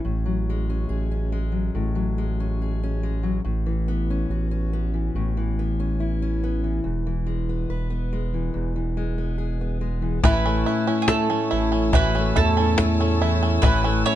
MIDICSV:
0, 0, Header, 1, 7, 480
1, 0, Start_track
1, 0, Tempo, 848656
1, 24, Time_signature, 4, 2, 24, 8
1, 8004, End_track
2, 0, Start_track
2, 0, Title_t, "String section"
2, 0, Program_c, 0, 48
2, 5793, Note_on_c, 0, 88, 83
2, 5794, Note_on_c, 0, 73, 71
2, 5794, Note_on_c, 0, 81, 65
2, 8004, Note_off_c, 0, 73, 0
2, 8004, Note_off_c, 0, 81, 0
2, 8004, Note_off_c, 0, 88, 0
2, 8004, End_track
3, 0, Start_track
3, 0, Title_t, "Mandolin"
3, 0, Program_c, 1, 25
3, 5797, Note_on_c, 1, 71, 78
3, 6233, Note_on_c, 1, 68, 59
3, 6247, Note_off_c, 1, 71, 0
3, 6268, Note_off_c, 1, 68, 0
3, 6270, Note_on_c, 1, 69, 71
3, 6760, Note_on_c, 1, 71, 90
3, 6765, Note_off_c, 1, 69, 0
3, 6994, Note_on_c, 1, 69, 86
3, 7002, Note_off_c, 1, 71, 0
3, 7703, Note_on_c, 1, 71, 88
3, 7733, Note_off_c, 1, 69, 0
3, 7929, Note_off_c, 1, 71, 0
3, 7950, Note_on_c, 1, 73, 92
3, 8004, Note_off_c, 1, 73, 0
3, 8004, End_track
4, 0, Start_track
4, 0, Title_t, "Five-string banjo"
4, 0, Program_c, 2, 105
4, 5793, Note_on_c, 2, 52, 82
4, 5797, Note_on_c, 2, 64, 64
4, 5914, Note_on_c, 2, 61, 55
4, 6024, Note_off_c, 2, 64, 0
4, 6031, Note_on_c, 2, 64, 64
4, 6144, Note_off_c, 2, 61, 0
4, 6150, Note_on_c, 2, 61, 61
4, 6269, Note_on_c, 2, 57, 61
4, 6383, Note_off_c, 2, 61, 0
4, 6390, Note_on_c, 2, 61, 53
4, 6502, Note_off_c, 2, 64, 0
4, 6509, Note_on_c, 2, 64, 68
4, 6622, Note_off_c, 2, 61, 0
4, 6628, Note_on_c, 2, 61, 59
4, 6745, Note_off_c, 2, 52, 0
4, 6750, Note_off_c, 2, 64, 0
4, 6752, Note_on_c, 2, 52, 75
4, 6756, Note_on_c, 2, 64, 68
4, 6865, Note_off_c, 2, 61, 0
4, 6872, Note_on_c, 2, 61, 56
4, 6983, Note_off_c, 2, 64, 0
4, 6990, Note_on_c, 2, 64, 70
4, 7103, Note_off_c, 2, 61, 0
4, 7109, Note_on_c, 2, 61, 57
4, 7224, Note_off_c, 2, 57, 0
4, 7231, Note_on_c, 2, 57, 60
4, 7350, Note_off_c, 2, 61, 0
4, 7356, Note_on_c, 2, 61, 54
4, 7468, Note_off_c, 2, 64, 0
4, 7475, Note_on_c, 2, 64, 69
4, 7587, Note_off_c, 2, 61, 0
4, 7594, Note_on_c, 2, 61, 60
4, 7706, Note_off_c, 2, 52, 0
4, 7710, Note_off_c, 2, 64, 0
4, 7712, Note_on_c, 2, 52, 82
4, 7717, Note_on_c, 2, 64, 70
4, 7823, Note_off_c, 2, 61, 0
4, 7830, Note_on_c, 2, 61, 59
4, 7946, Note_off_c, 2, 64, 0
4, 7953, Note_on_c, 2, 64, 68
4, 8004, Note_off_c, 2, 52, 0
4, 8004, Note_off_c, 2, 57, 0
4, 8004, Note_off_c, 2, 61, 0
4, 8004, Note_off_c, 2, 64, 0
4, 8004, End_track
5, 0, Start_track
5, 0, Title_t, "Steel-string acoustic guitar"
5, 0, Program_c, 3, 25
5, 0, Note_on_c, 3, 61, 46
5, 26, Note_on_c, 3, 45, 59
5, 144, Note_on_c, 3, 54, 49
5, 280, Note_on_c, 3, 56, 51
5, 391, Note_off_c, 3, 61, 0
5, 393, Note_on_c, 3, 61, 47
5, 503, Note_on_c, 3, 68, 50
5, 627, Note_off_c, 3, 61, 0
5, 630, Note_on_c, 3, 61, 47
5, 742, Note_off_c, 3, 56, 0
5, 749, Note_on_c, 3, 56, 51
5, 853, Note_off_c, 3, 54, 0
5, 860, Note_on_c, 3, 54, 45
5, 986, Note_off_c, 3, 45, 0
5, 988, Note_on_c, 3, 45, 59
5, 1098, Note_off_c, 3, 54, 0
5, 1104, Note_on_c, 3, 54, 52
5, 1226, Note_off_c, 3, 56, 0
5, 1234, Note_on_c, 3, 56, 52
5, 1347, Note_off_c, 3, 61, 0
5, 1358, Note_on_c, 3, 61, 47
5, 1464, Note_off_c, 3, 68, 0
5, 1480, Note_on_c, 3, 68, 46
5, 1591, Note_off_c, 3, 61, 0
5, 1603, Note_on_c, 3, 61, 52
5, 1709, Note_off_c, 3, 56, 0
5, 1715, Note_on_c, 3, 56, 49
5, 1821, Note_off_c, 3, 54, 0
5, 1828, Note_on_c, 3, 54, 52
5, 1918, Note_off_c, 3, 54, 0
5, 1921, Note_off_c, 3, 56, 0
5, 1924, Note_off_c, 3, 68, 0
5, 1925, Note_off_c, 3, 61, 0
5, 1942, Note_off_c, 3, 45, 0
5, 1949, Note_on_c, 3, 45, 68
5, 2071, Note_on_c, 3, 52, 54
5, 2195, Note_on_c, 3, 59, 50
5, 2321, Note_on_c, 3, 61, 49
5, 2435, Note_on_c, 3, 66, 47
5, 2545, Note_off_c, 3, 61, 0
5, 2552, Note_on_c, 3, 61, 50
5, 2674, Note_off_c, 3, 59, 0
5, 2676, Note_on_c, 3, 59, 50
5, 2790, Note_off_c, 3, 52, 0
5, 2792, Note_on_c, 3, 52, 46
5, 2908, Note_off_c, 3, 45, 0
5, 2916, Note_on_c, 3, 45, 65
5, 3036, Note_off_c, 3, 52, 0
5, 3038, Note_on_c, 3, 52, 55
5, 3152, Note_off_c, 3, 59, 0
5, 3162, Note_on_c, 3, 59, 49
5, 3270, Note_off_c, 3, 61, 0
5, 3279, Note_on_c, 3, 61, 48
5, 3392, Note_off_c, 3, 66, 0
5, 3394, Note_on_c, 3, 64, 49
5, 3513, Note_off_c, 3, 61, 0
5, 3519, Note_on_c, 3, 61, 53
5, 3633, Note_off_c, 3, 59, 0
5, 3640, Note_on_c, 3, 59, 48
5, 3752, Note_off_c, 3, 52, 0
5, 3755, Note_on_c, 3, 52, 47
5, 3845, Note_off_c, 3, 59, 0
5, 3845, Note_off_c, 3, 61, 0
5, 3868, Note_on_c, 3, 40, 64
5, 3873, Note_off_c, 3, 45, 0
5, 3994, Note_off_c, 3, 52, 0
5, 3996, Note_on_c, 3, 52, 51
5, 4109, Note_on_c, 3, 56, 49
5, 4237, Note_on_c, 3, 59, 48
5, 4352, Note_off_c, 3, 64, 0
5, 4354, Note_on_c, 3, 71, 51
5, 4463, Note_off_c, 3, 59, 0
5, 4470, Note_on_c, 3, 59, 51
5, 4590, Note_off_c, 3, 56, 0
5, 4596, Note_on_c, 3, 56, 50
5, 4709, Note_off_c, 3, 52, 0
5, 4716, Note_on_c, 3, 52, 45
5, 4822, Note_off_c, 3, 40, 0
5, 4829, Note_on_c, 3, 40, 59
5, 4947, Note_off_c, 3, 52, 0
5, 4953, Note_on_c, 3, 52, 49
5, 5067, Note_off_c, 3, 56, 0
5, 5074, Note_on_c, 3, 56, 48
5, 5185, Note_off_c, 3, 59, 0
5, 5192, Note_on_c, 3, 59, 48
5, 5303, Note_off_c, 3, 71, 0
5, 5306, Note_on_c, 3, 68, 46
5, 5428, Note_off_c, 3, 59, 0
5, 5435, Note_on_c, 3, 59, 46
5, 5542, Note_off_c, 3, 56, 0
5, 5549, Note_on_c, 3, 56, 46
5, 5660, Note_off_c, 3, 52, 0
5, 5667, Note_on_c, 3, 52, 46
5, 5760, Note_off_c, 3, 52, 0
5, 5760, Note_off_c, 3, 68, 0
5, 5761, Note_off_c, 3, 56, 0
5, 5789, Note_on_c, 3, 45, 85
5, 5790, Note_off_c, 3, 40, 0
5, 5793, Note_off_c, 3, 59, 0
5, 5794, Note_on_c, 3, 64, 72
5, 5914, Note_on_c, 3, 57, 57
5, 6040, Note_on_c, 3, 61, 63
5, 6153, Note_off_c, 3, 64, 0
5, 6155, Note_on_c, 3, 64, 58
5, 6272, Note_off_c, 3, 61, 0
5, 6274, Note_on_c, 3, 61, 60
5, 6392, Note_off_c, 3, 57, 0
5, 6395, Note_on_c, 3, 57, 61
5, 6517, Note_on_c, 3, 52, 64
5, 6642, Note_off_c, 3, 61, 0
5, 6644, Note_on_c, 3, 61, 51
5, 6755, Note_off_c, 3, 45, 0
5, 6757, Note_on_c, 3, 45, 72
5, 6760, Note_off_c, 3, 64, 0
5, 6762, Note_on_c, 3, 66, 56
5, 6873, Note_off_c, 3, 57, 0
5, 6891, Note_on_c, 3, 57, 58
5, 6997, Note_off_c, 3, 61, 0
5, 7013, Note_on_c, 3, 61, 57
5, 7116, Note_off_c, 3, 66, 0
5, 7125, Note_on_c, 3, 64, 61
5, 7240, Note_off_c, 3, 61, 0
5, 7247, Note_on_c, 3, 61, 64
5, 7353, Note_off_c, 3, 57, 0
5, 7360, Note_on_c, 3, 57, 60
5, 7474, Note_off_c, 3, 52, 0
5, 7480, Note_on_c, 3, 52, 62
5, 7592, Note_off_c, 3, 61, 0
5, 7599, Note_on_c, 3, 61, 60
5, 7686, Note_off_c, 3, 52, 0
5, 7686, Note_off_c, 3, 57, 0
5, 7686, Note_off_c, 3, 61, 0
5, 7703, Note_off_c, 3, 45, 0
5, 7708, Note_off_c, 3, 64, 0
5, 7710, Note_on_c, 3, 45, 86
5, 7715, Note_on_c, 3, 64, 70
5, 7837, Note_on_c, 3, 57, 52
5, 7959, Note_on_c, 3, 61, 68
5, 8004, Note_off_c, 3, 45, 0
5, 8004, Note_off_c, 3, 57, 0
5, 8004, Note_off_c, 3, 61, 0
5, 8004, Note_off_c, 3, 64, 0
5, 8004, End_track
6, 0, Start_track
6, 0, Title_t, "Sub bass"
6, 0, Program_c, 4, 38
6, 29, Note_on_c, 4, 33, 96
6, 484, Note_off_c, 4, 33, 0
6, 507, Note_on_c, 4, 33, 88
6, 963, Note_off_c, 4, 33, 0
6, 988, Note_on_c, 4, 33, 74
6, 1924, Note_off_c, 4, 33, 0
6, 1953, Note_on_c, 4, 33, 108
6, 2407, Note_off_c, 4, 33, 0
6, 2430, Note_on_c, 4, 33, 91
6, 2886, Note_off_c, 4, 33, 0
6, 2910, Note_on_c, 4, 33, 81
6, 3847, Note_off_c, 4, 33, 0
6, 3875, Note_on_c, 4, 28, 96
6, 4330, Note_off_c, 4, 28, 0
6, 4351, Note_on_c, 4, 28, 91
6, 4808, Note_off_c, 4, 28, 0
6, 4836, Note_on_c, 4, 28, 85
6, 5771, Note_off_c, 4, 28, 0
6, 5796, Note_on_c, 4, 33, 108
6, 6022, Note_off_c, 4, 33, 0
6, 6517, Note_on_c, 4, 33, 91
6, 6971, Note_off_c, 4, 33, 0
6, 6989, Note_on_c, 4, 40, 97
6, 7687, Note_off_c, 4, 40, 0
6, 7711, Note_on_c, 4, 33, 114
6, 7938, Note_off_c, 4, 33, 0
6, 8004, End_track
7, 0, Start_track
7, 0, Title_t, "Cajon"
7, 5789, Note_on_c, 9, 36, 96
7, 5789, Note_on_c, 9, 38, 26
7, 5846, Note_off_c, 9, 36, 0
7, 5846, Note_off_c, 9, 38, 0
7, 6266, Note_on_c, 9, 38, 94
7, 6323, Note_off_c, 9, 38, 0
7, 6748, Note_on_c, 9, 36, 93
7, 6748, Note_on_c, 9, 38, 27
7, 6805, Note_off_c, 9, 36, 0
7, 6805, Note_off_c, 9, 38, 0
7, 6993, Note_on_c, 9, 36, 76
7, 6993, Note_on_c, 9, 38, 30
7, 7049, Note_off_c, 9, 36, 0
7, 7049, Note_off_c, 9, 38, 0
7, 7227, Note_on_c, 9, 38, 98
7, 7284, Note_off_c, 9, 38, 0
7, 7709, Note_on_c, 9, 36, 103
7, 7709, Note_on_c, 9, 38, 29
7, 7766, Note_off_c, 9, 36, 0
7, 7766, Note_off_c, 9, 38, 0
7, 8004, End_track
0, 0, End_of_file